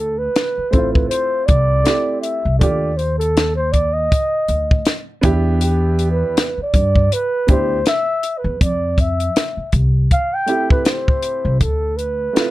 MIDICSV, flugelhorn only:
0, 0, Header, 1, 2, 480
1, 0, Start_track
1, 0, Tempo, 750000
1, 1672, Time_signature, 4, 2, 24, 8
1, 8004, End_track
2, 0, Start_track
2, 0, Title_t, "Flugelhorn"
2, 0, Program_c, 0, 56
2, 0, Note_on_c, 0, 69, 86
2, 118, Note_on_c, 0, 71, 101
2, 128, Note_off_c, 0, 69, 0
2, 457, Note_on_c, 0, 72, 90
2, 466, Note_off_c, 0, 71, 0
2, 594, Note_off_c, 0, 72, 0
2, 598, Note_on_c, 0, 71, 81
2, 691, Note_off_c, 0, 71, 0
2, 695, Note_on_c, 0, 72, 104
2, 935, Note_on_c, 0, 74, 116
2, 945, Note_off_c, 0, 72, 0
2, 1412, Note_off_c, 0, 74, 0
2, 1416, Note_on_c, 0, 76, 90
2, 1647, Note_off_c, 0, 76, 0
2, 1658, Note_on_c, 0, 74, 99
2, 1900, Note_on_c, 0, 72, 88
2, 1910, Note_off_c, 0, 74, 0
2, 2032, Note_off_c, 0, 72, 0
2, 2036, Note_on_c, 0, 69, 94
2, 2267, Note_off_c, 0, 69, 0
2, 2276, Note_on_c, 0, 72, 99
2, 2382, Note_on_c, 0, 74, 94
2, 2391, Note_off_c, 0, 72, 0
2, 2518, Note_on_c, 0, 75, 102
2, 2527, Note_off_c, 0, 74, 0
2, 3245, Note_off_c, 0, 75, 0
2, 3590, Note_on_c, 0, 67, 90
2, 3889, Note_off_c, 0, 67, 0
2, 3914, Note_on_c, 0, 71, 89
2, 4211, Note_off_c, 0, 71, 0
2, 4243, Note_on_c, 0, 74, 97
2, 4566, Note_on_c, 0, 71, 119
2, 4575, Note_off_c, 0, 74, 0
2, 4799, Note_off_c, 0, 71, 0
2, 4802, Note_on_c, 0, 72, 98
2, 5020, Note_off_c, 0, 72, 0
2, 5044, Note_on_c, 0, 76, 126
2, 5365, Note_on_c, 0, 71, 97
2, 5374, Note_off_c, 0, 76, 0
2, 5513, Note_off_c, 0, 71, 0
2, 5517, Note_on_c, 0, 74, 93
2, 5763, Note_on_c, 0, 76, 97
2, 5772, Note_off_c, 0, 74, 0
2, 6237, Note_off_c, 0, 76, 0
2, 6479, Note_on_c, 0, 77, 118
2, 6618, Note_on_c, 0, 79, 110
2, 6627, Note_off_c, 0, 77, 0
2, 6852, Note_off_c, 0, 79, 0
2, 6856, Note_on_c, 0, 71, 96
2, 6954, Note_on_c, 0, 72, 88
2, 6964, Note_off_c, 0, 71, 0
2, 7425, Note_off_c, 0, 72, 0
2, 7429, Note_on_c, 0, 69, 86
2, 7660, Note_on_c, 0, 71, 106
2, 7670, Note_off_c, 0, 69, 0
2, 8004, Note_off_c, 0, 71, 0
2, 8004, End_track
0, 0, End_of_file